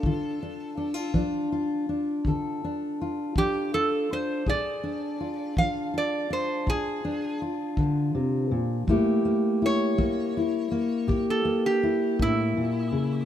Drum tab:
BD |o--o--o--o--|o--o--o--o--|o--o--o--o--|